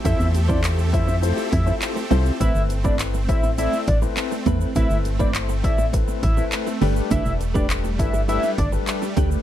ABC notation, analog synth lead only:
X:1
M:4/4
L:1/16
Q:1/4=102
K:Am
V:1 name="Analog synth lead"
e2 z d z2 e2 z2 e2 z4 | e2 z d z2 e2 e2 d z4 z | e2 z d z2 e2 z2 e2 z4 | e2 z d z2 e2 e2 d z4 z |]